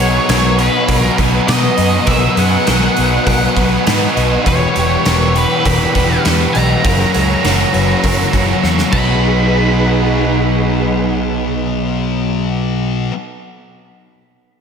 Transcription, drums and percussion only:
0.00 open hi-hat soft
0.29 snare loud
0.29 open hi-hat medium
0.59 open hi-hat soft
0.88 kick medium
0.88 open hi-hat medium
1.18 kick medium
1.18 open hi-hat medium
1.48 snare loud
1.48 open hi-hat medium
1.78 open hi-hat medium
2.07 kick loud
2.07 open hi-hat medium
2.37 open hi-hat medium
2.67 snare loud
2.67 open hi-hat medium
2.97 open hi-hat medium
3.27 kick medium
3.27 open hi-hat medium
3.57 kick medium
3.57 open hi-hat soft
3.87 snare loud
3.87 open hi-hat medium
4.17 open hi-hat soft
4.46 kick loud
4.46 open hi-hat medium
4.76 open hi-hat soft
5.06 snare loud
5.06 open hi-hat medium
5.36 open hi-hat soft
5.65 kick medium
5.65 open hi-hat medium
5.95 kick medium
5.95 open hi-hat soft
6.25 snare loud
6.25 open hi-hat medium
6.55 open hi-hat medium
6.84 kick loud
6.84 open hi-hat medium
7.14 open hi-hat soft
7.45 snare medium
7.45 open hi-hat medium
7.74 open hi-hat soft
8.04 kick medium
8.04 open hi-hat medium
8.33 kick medium
8.33 open hi-hat soft
8.64 snare medium
8.78 snare medium
8.93 kick medium
8.93 crash medium

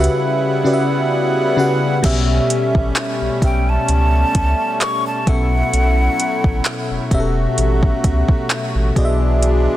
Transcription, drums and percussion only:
0.04 closed hi-hat soft
2.04 kick loud
2.04 closed hi-hat medium
2.04 crash medium
2.50 closed hi-hat medium
2.75 kick medium
2.96 clap loud
2.96 closed hi-hat medium
3.42 kick medium
3.42 closed hi-hat medium
3.88 closed hi-hat medium
4.35 kick medium
4.35 closed hi-hat medium
4.81 clap loud
4.81 closed hi-hat medium
5.27 kick loud
5.27 closed hi-hat medium
5.73 closed hi-hat medium
6.20 closed hi-hat medium
6.44 kick medium
6.65 clap loud
6.65 closed hi-hat medium
7.11 kick medium
7.11 closed hi-hat medium
7.58 closed hi-hat medium
7.83 kick medium
8.04 kick medium
8.04 closed hi-hat medium
8.28 kick medium
8.50 clap loud
8.50 closed hi-hat medium
8.96 kick medium
8.96 closed hi-hat medium
9.43 closed hi-hat medium

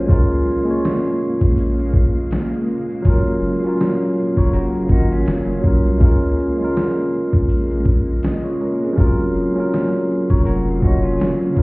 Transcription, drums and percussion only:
0.09 kick loud
0.09 closed hi-hat medium
0.09 shaker medium
0.30 shaker medium
0.46 shaker medium
0.85 snare loud
0.85 closed hi-hat medium
0.85 shaker medium
1.06 shaker soft
1.22 shaker soft
1.41 kick loud
1.57 closed hi-hat medium
1.57 shaker medium
1.79 shaker soft
1.94 kick medium
1.94 shaker soft
2.31 snare loud
2.31 closed hi-hat medium
2.31 shaker medium
2.54 shaker soft
2.68 shaker soft
2.90 shaker soft
3.05 kick loud
3.05 closed hi-hat medium
3.05 shaker medium
3.26 shaker medium
3.42 shaker medium
3.63 shaker soft
3.80 snare loud
3.80 closed hi-hat medium
3.80 shaker medium
4.02 shaker soft
4.17 shaker soft
4.37 kick loud
4.37 shaker soft
4.53 closed hi-hat medium
4.53 shaker medium
4.74 shaker soft
4.89 kick medium
4.89 shaker soft
5.11 shaker medium
5.26 snare loud
5.26 closed hi-hat medium
5.26 shaker medium
5.49 shaker soft
5.64 kick medium
5.64 shaker soft
5.86 shaker soft
6.01 kick loud
6.01 closed hi-hat medium
6.01 shaker medium
6.22 shaker medium
6.38 shaker medium
6.77 snare loud
6.77 closed hi-hat medium
6.77 shaker medium
6.98 shaker medium
7.13 shaker soft
7.33 kick loud
7.49 closed hi-hat medium
7.49 shaker medium
7.70 shaker soft
7.86 kick medium
7.86 shaker soft
8.23 snare loud
8.23 closed hi-hat medium
8.23 shaker medium
8.45 shaker soft
8.60 shaker soft
8.82 shaker soft
8.98 kick loud
8.98 closed hi-hat medium
8.98 shaker medium
9.19 shaker medium
9.35 shaker medium
9.73 snare loud
9.73 closed hi-hat medium
9.73 shaker medium
9.95 shaker medium
10.10 shaker soft
10.30 kick loud
10.47 closed hi-hat medium
10.47 shaker medium
10.68 shaker soft
10.82 kick medium
10.82 shaker soft
11.20 snare loud
11.20 closed hi-hat medium
11.20 shaker medium
11.42 shaker soft
11.56 kick medium
11.56 shaker soft

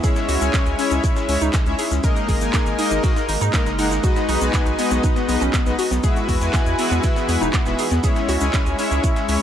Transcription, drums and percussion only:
0.04 kick loud
0.04 closed hi-hat medium
0.04 shaker medium
0.16 snare medium
0.16 closed hi-hat soft
0.16 shaker soft
0.29 open hi-hat loud
0.29 shaker medium
0.41 closed hi-hat soft
0.41 shaker medium
0.53 kick loud
0.53 snare loud
0.53 clap loud
0.53 closed hi-hat medium
0.53 shaker medium
0.66 closed hi-hat soft
0.66 shaker soft
0.79 open hi-hat loud
0.79 shaker medium
0.91 closed hi-hat soft
0.91 shaker medium
1.04 kick loud
1.04 closed hi-hat medium
1.04 shaker medium
1.16 snare medium
1.16 closed hi-hat soft
1.16 shaker soft
1.29 open hi-hat loud
1.29 shaker medium
1.41 closed hi-hat soft
1.41 shaker medium
1.53 kick loud
1.53 snare loud
1.53 clap loud
1.53 closed hi-hat medium
1.53 shaker medium
1.66 closed hi-hat soft
1.66 shaker soft
1.79 open hi-hat loud
1.79 shaker medium
1.91 snare soft
1.91 shaker medium
2.04 kick loud
2.04 closed hi-hat medium
2.04 shaker medium
2.16 closed hi-hat soft
2.16 shaker soft
2.29 kick medium
2.29 open hi-hat loud
2.29 shaker medium
2.41 closed hi-hat soft
2.41 shaker medium
2.53 kick loud
2.53 snare loud
2.53 clap loud
2.53 closed hi-hat medium
2.53 shaker medium
2.66 closed hi-hat soft
2.66 shaker soft
2.79 open hi-hat loud
2.79 shaker medium
2.91 shaker medium
3.03 kick loud
3.03 closed hi-hat medium
3.03 open hi-hat medium
3.03 shaker medium
3.16 snare medium
3.16 closed hi-hat soft
3.16 shaker soft
3.29 open hi-hat loud
3.29 shaker medium
3.41 closed hi-hat soft
3.41 shaker medium
3.53 kick loud
3.53 snare loud
3.53 clap loud
3.53 closed hi-hat medium
3.53 shaker medium
3.66 snare medium
3.66 closed hi-hat soft
3.66 shaker soft
3.79 open hi-hat loud
3.79 shaker medium
3.91 snare medium
3.91 closed hi-hat soft
3.91 shaker medium
4.04 kick loud
4.04 closed hi-hat medium
4.04 shaker medium
4.16 snare medium
4.16 closed hi-hat soft
4.16 shaker soft
4.29 open hi-hat loud
4.29 shaker medium
4.41 shaker medium
4.53 kick loud
4.53 snare loud
4.53 clap loud
4.53 closed hi-hat medium
4.53 shaker medium
4.66 closed hi-hat soft
4.66 shaker soft
4.79 open hi-hat loud
4.79 shaker medium
4.91 shaker medium
5.04 kick loud
5.04 closed hi-hat medium
5.04 shaker medium
5.16 snare medium
5.16 closed hi-hat soft
5.16 shaker soft
5.29 open hi-hat loud
5.29 shaker medium
5.41 shaker medium
5.53 kick loud
5.53 snare loud
5.53 clap loud
5.53 closed hi-hat medium
5.53 shaker medium
5.66 closed hi-hat soft
5.66 shaker soft
5.79 open hi-hat loud
5.79 shaker medium
5.91 snare soft
5.91 closed hi-hat soft
5.91 shaker medium
6.03 kick loud
6.03 closed hi-hat medium
6.03 shaker medium
6.16 closed hi-hat soft
6.16 shaker soft
6.29 kick medium
6.29 open hi-hat loud
6.29 shaker medium
6.41 closed hi-hat soft
6.41 shaker medium
6.53 kick loud
6.53 snare loud
6.53 clap loud
6.53 closed hi-hat medium
6.53 shaker medium
6.66 closed hi-hat soft
6.66 shaker soft
6.79 open hi-hat loud
6.79 shaker medium
6.91 closed hi-hat soft
6.91 shaker medium
7.03 kick loud
7.03 closed hi-hat medium
7.03 open hi-hat medium
7.03 shaker medium
7.16 snare medium
7.16 closed hi-hat soft
7.16 shaker soft
7.29 open hi-hat loud
7.29 shaker medium
7.42 shaker medium
7.53 kick loud
7.53 snare loud
7.53 clap loud
7.53 closed hi-hat medium
7.53 shaker medium
7.66 snare medium
7.66 closed hi-hat soft
7.66 shaker soft
7.79 open hi-hat loud
7.79 shaker medium
7.91 snare medium
7.91 closed hi-hat soft
7.91 shaker medium
8.04 kick loud
8.04 closed hi-hat medium
8.04 shaker medium
8.16 snare medium
8.16 closed hi-hat soft
8.16 shaker soft
8.29 open hi-hat loud
8.29 shaker medium
8.41 closed hi-hat soft
8.41 shaker medium
8.53 kick loud
8.53 snare loud
8.53 clap loud
8.53 closed hi-hat medium
8.53 shaker medium
8.66 closed hi-hat soft
8.66 shaker soft
8.79 open hi-hat loud
8.79 shaker medium
8.91 closed hi-hat soft
8.91 shaker medium
9.04 kick loud
9.04 closed hi-hat loud
9.04 shaker medium
9.16 snare medium
9.16 closed hi-hat soft
9.16 shaker soft
9.29 open hi-hat loud
9.29 shaker medium

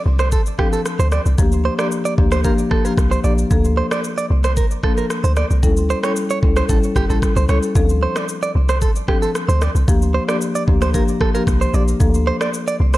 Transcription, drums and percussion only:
0.19 cross-stick medium
0.19 shaker soft
0.32 kick medium
0.32 shaker medium
0.46 shaker medium
0.59 kick medium
0.59 cross-stick medium
0.73 shaker soft
0.86 cross-stick medium
0.86 shaker medium
1.00 shaker medium
1.12 cross-stick medium
1.12 shaker soft
1.26 shaker soft
1.38 kick loud
1.38 shaker medium
1.52 shaker medium
1.79 cross-stick loud
1.79 shaker soft
1.92 shaker medium
2.05 shaker medium
2.18 kick medium
2.32 cross-stick medium
2.32 shaker soft
2.44 kick medium
2.44 shaker medium
2.58 shaker soft
2.71 kick medium
2.71 cross-stick medium
2.85 shaker soft
2.98 kick medium
2.98 cross-stick medium
2.98 shaker medium
3.12 shaker soft
3.24 shaker soft
3.38 shaker soft
3.51 kick loud
3.51 shaker medium
3.65 shaker medium
3.91 cross-stick loud
3.91 shaker soft
4.04 shaker medium
4.18 shaker medium
4.44 cross-stick medium
4.44 shaker soft
4.57 kick medium
4.57 shaker medium
4.71 shaker medium
4.83 kick medium
4.83 cross-stick medium
4.97 shaker soft
5.10 cross-stick medium
5.10 shaker medium
5.24 shaker medium
5.36 cross-stick medium
5.36 shaker soft
5.51 shaker soft
5.63 kick loud
5.63 shaker medium
5.77 shaker medium
5.90 shaker soft
6.03 cross-stick loud
6.03 shaker soft
6.16 shaker medium
6.30 shaker medium
6.43 kick medium
6.56 cross-stick medium
6.56 shaker soft
6.69 kick medium
6.69 shaker medium
6.83 shaker soft
6.96 kick medium
6.96 cross-stick medium
6.96 shaker soft
7.10 shaker soft
7.22 kick medium
7.22 cross-stick medium
7.22 shaker medium
7.37 shaker medium
7.49 cross-stick medium
7.49 shaker soft
7.63 shaker soft
7.76 kick loud
7.76 shaker medium
7.89 shaker medium
8.16 cross-stick loud
8.16 shaker soft
8.29 shaker medium
8.43 shaker medium
8.69 cross-stick medium
8.69 shaker medium
8.82 kick medium
8.82 shaker medium
8.96 shaker soft
9.08 kick medium
9.08 cross-stick medium
9.22 shaker soft
9.35 cross-stick medium
9.35 shaker medium
9.49 shaker medium
9.62 cross-stick medium
9.62 shaker soft
9.76 shaker soft
9.88 kick loud
9.88 shaker medium
10.02 shaker medium
10.29 cross-stick loud
10.29 shaker soft
10.41 shaker medium
10.55 shaker medium
10.68 kick medium
10.82 cross-stick medium
10.82 shaker soft
10.94 kick medium
10.94 shaker medium
11.08 shaker soft
11.21 kick medium
11.21 cross-stick medium
11.35 shaker soft
11.47 kick medium
11.47 cross-stick medium
11.47 shaker medium
11.62 shaker medium
11.74 shaker soft
11.88 shaker soft
12.00 kick loud
12.00 shaker medium
12.14 shaker medium
12.41 cross-stick loud
12.41 shaker soft
12.54 shaker medium
12.68 shaker medium
12.94 cross-stick medium
12.94 shaker soft

